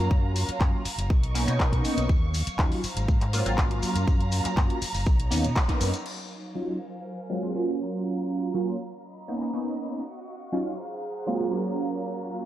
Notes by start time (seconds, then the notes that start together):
Already playing: F#3 A#3 C#4 F4 F5 A#5
0.11 F#2, kick, maracas
0.36 open hi-hat, maracas
0.48 muted fingered electric bass stroke, closed hi-hat, maracas
0.60 F#2 F#3 A#3 C#4 F4, kick, clap, maracas
0.85 muted fingered electric bass stroke, open hi-hat, maracas
0.98 F#1, closed hi-hat, maracas
1.10 B1 A#4 D#5 C#6, kick, maracas
1.23 closed hi-hat
1.35 A#3 B3 C#4 D#4, open hi-hat, maracas
1.47 B2 A#3 B3 C#4 D#4, closed hi-hat, maracas
1.59 A#3 B3 C#4 D#4, kick, clap, maracas
1.72 kick, closed hi-hat
1.85 muted fingered electric bass stroke, open hi-hat, maracas
1.97 B1, closed hi-hat, maracas
2.09 D#2 F#3 F5, kick, maracas
2.34 open hi-hat, maracas
2.47 muted fingered electric bass stroke, closed hi-hat, maracas
2.59 D#2 F#3 C#4 D#4 F4, kick, clap, maracas
2.72 open hi-hat
2.83 C5 A#5, muted fingered electric bass stroke, open hi-hat, maracas
2.96 G#1, closed hi-hat, maracas
3.08 G#2, kick, maracas
3.21 clap, closed hi-hat
3.33 F#3 A#3 C4 F4, open hi-hat, maracas
3.46 G#1 F#3 A#3 C4 F4, closed hi-hat, maracas
3.57 F#3 A#3 C#4 F4, kick, clap, maracas
3.71 closed hi-hat
3.82 muted fingered electric bass stroke, open hi-hat, maracas
3.95 F#2, closed hi-hat, maracas
4.07 F#2, kick, maracas
4.20 closed hi-hat
4.32 open hi-hat, maracas
4.45 muted fingered electric bass stroke, clap, closed hi-hat, maracas
4.57 F#2 F#3 A#3 C#4 F4, kick, clap, maracas
4.70 closed hi-hat
4.82 muted fingered electric bass stroke, open hi-hat, maracas
4.94 F#1, open hi-hat, maracas
5.06 B1 D#4 C#5, kick, maracas
5.20 closed hi-hat
5.31 D#2 A#3 B3 C#4 D#4, open hi-hat, maracas
5.44 B2, closed hi-hat, maracas
5.56 kick, clap, maracas
5.68 A#3 B3 C#4 D#4, kick, closed hi-hat
5.81 F#2, open hi-hat, maracas
5.94 closed hi-hat, maracas
6.06 F#3 D#4 C#5 F5, crash
6.55 F#3 C#4 D#4 F4
6.80 A#4 C5 G#5
7.29 F#3 G#3 A#3 C4 F4
7.42 F#3 G#3 A#3 C4 F4
7.54 F#3 A#3 C#4 F4
7.79 F5 A#5
8.54 F#3 A#3 C#4 F4
9.03 C#5 D#5 A#5 B5
9.28 A#3 B3 C#4 D#4
9.41 A#3 B3 C#4 D#4
9.53 A#3 B3 C#4 D#4
10.03 F#4 F5 C#6
10.52 F#3 C#4 D#4 F4
10.77 G#4 C5 F#5 A#5
11.26 F#3 G#3 A#3 C4 F4
11.39 F#3 G#3 A#3 C4 F4
11.51 F#3 A#3 C#4 F4
11.76 F#3 F5